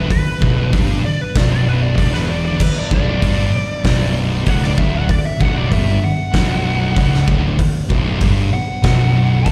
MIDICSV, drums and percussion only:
0, 0, Header, 1, 2, 480
1, 0, Start_track
1, 0, Key_signature, 2, "minor"
1, 0, Tempo, 623701
1, 78, Time_signature, 4, 2, 24, 8
1, 7325, End_track
2, 0, Start_track
2, 0, Title_t, "Drums"
2, 81, Note_on_c, 9, 36, 109
2, 81, Note_on_c, 9, 46, 61
2, 158, Note_off_c, 9, 36, 0
2, 158, Note_off_c, 9, 46, 0
2, 322, Note_on_c, 9, 36, 109
2, 399, Note_off_c, 9, 36, 0
2, 563, Note_on_c, 9, 36, 109
2, 568, Note_on_c, 9, 46, 62
2, 640, Note_off_c, 9, 36, 0
2, 645, Note_off_c, 9, 46, 0
2, 1043, Note_on_c, 9, 36, 117
2, 1044, Note_on_c, 9, 46, 68
2, 1053, Note_on_c, 9, 38, 122
2, 1120, Note_off_c, 9, 36, 0
2, 1121, Note_off_c, 9, 46, 0
2, 1130, Note_off_c, 9, 38, 0
2, 1523, Note_on_c, 9, 36, 107
2, 1529, Note_on_c, 9, 46, 65
2, 1600, Note_off_c, 9, 36, 0
2, 1606, Note_off_c, 9, 46, 0
2, 1649, Note_on_c, 9, 38, 34
2, 1726, Note_off_c, 9, 38, 0
2, 2000, Note_on_c, 9, 49, 108
2, 2002, Note_on_c, 9, 36, 108
2, 2077, Note_off_c, 9, 49, 0
2, 2079, Note_off_c, 9, 36, 0
2, 2241, Note_on_c, 9, 36, 110
2, 2318, Note_off_c, 9, 36, 0
2, 2481, Note_on_c, 9, 36, 104
2, 2482, Note_on_c, 9, 46, 69
2, 2558, Note_off_c, 9, 36, 0
2, 2559, Note_off_c, 9, 46, 0
2, 2956, Note_on_c, 9, 46, 73
2, 2961, Note_on_c, 9, 36, 118
2, 2965, Note_on_c, 9, 38, 122
2, 3033, Note_off_c, 9, 46, 0
2, 3038, Note_off_c, 9, 36, 0
2, 3042, Note_off_c, 9, 38, 0
2, 3432, Note_on_c, 9, 46, 67
2, 3438, Note_on_c, 9, 36, 103
2, 3509, Note_off_c, 9, 46, 0
2, 3515, Note_off_c, 9, 36, 0
2, 3566, Note_on_c, 9, 38, 34
2, 3643, Note_off_c, 9, 38, 0
2, 3678, Note_on_c, 9, 36, 114
2, 3755, Note_off_c, 9, 36, 0
2, 3916, Note_on_c, 9, 46, 57
2, 3919, Note_on_c, 9, 36, 111
2, 3993, Note_off_c, 9, 46, 0
2, 3996, Note_off_c, 9, 36, 0
2, 4160, Note_on_c, 9, 36, 105
2, 4237, Note_off_c, 9, 36, 0
2, 4400, Note_on_c, 9, 36, 109
2, 4402, Note_on_c, 9, 46, 58
2, 4477, Note_off_c, 9, 36, 0
2, 4479, Note_off_c, 9, 46, 0
2, 4875, Note_on_c, 9, 46, 65
2, 4878, Note_on_c, 9, 36, 114
2, 4885, Note_on_c, 9, 38, 124
2, 4952, Note_off_c, 9, 46, 0
2, 4955, Note_off_c, 9, 36, 0
2, 4962, Note_off_c, 9, 38, 0
2, 5360, Note_on_c, 9, 36, 110
2, 5363, Note_on_c, 9, 46, 66
2, 5437, Note_off_c, 9, 36, 0
2, 5440, Note_off_c, 9, 46, 0
2, 5495, Note_on_c, 9, 38, 36
2, 5572, Note_off_c, 9, 38, 0
2, 5601, Note_on_c, 9, 36, 112
2, 5678, Note_off_c, 9, 36, 0
2, 5841, Note_on_c, 9, 36, 102
2, 5841, Note_on_c, 9, 46, 67
2, 5918, Note_off_c, 9, 36, 0
2, 5918, Note_off_c, 9, 46, 0
2, 6081, Note_on_c, 9, 36, 111
2, 6158, Note_off_c, 9, 36, 0
2, 6315, Note_on_c, 9, 46, 68
2, 6320, Note_on_c, 9, 36, 110
2, 6392, Note_off_c, 9, 46, 0
2, 6397, Note_off_c, 9, 36, 0
2, 6799, Note_on_c, 9, 46, 74
2, 6802, Note_on_c, 9, 36, 120
2, 6808, Note_on_c, 9, 38, 120
2, 6876, Note_off_c, 9, 46, 0
2, 6879, Note_off_c, 9, 36, 0
2, 6885, Note_off_c, 9, 38, 0
2, 7280, Note_on_c, 9, 46, 65
2, 7281, Note_on_c, 9, 36, 107
2, 7325, Note_off_c, 9, 36, 0
2, 7325, Note_off_c, 9, 46, 0
2, 7325, End_track
0, 0, End_of_file